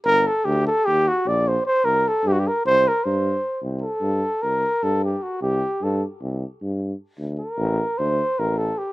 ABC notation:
X:1
M:9/8
L:1/16
Q:3/8=101
K:none
V:1 name="Trumpet"
_B2 A2 G2 A2 G2 ^F2 d2 c2 c2 | _B2 A2 G/2 ^F/2 G B2 c2 B2 c6 | z2 A6 _B4 A2 G2 ^F2 | G4 A2 z12 |
z2 _B6 c4 B2 A2 G2 |]
V:2 name="Tuba" clef=bass
G,,,4 D,,4 _E,,4 _B,,,6 | C,,4 G,,4 C,,4 G,,6 | C,,4 G,,4 C,,4 G,,6 | C,,4 G,,4 C,,4 G,,6 |
D,,4 A,,,4 D,,4 A,,,6 |]